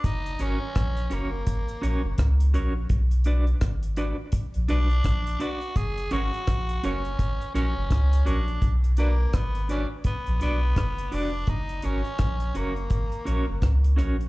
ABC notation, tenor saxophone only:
X:1
M:4/4
L:1/8
Q:"Swing 16ths" 1/4=84
K:F#
V:1 name="Tenor saxophone"
D C2 A,4 z | z4 z =D2 F | G F2 C2 C2 =D | z A, B, C B, B,2 =D |
D C2 A,4 z |]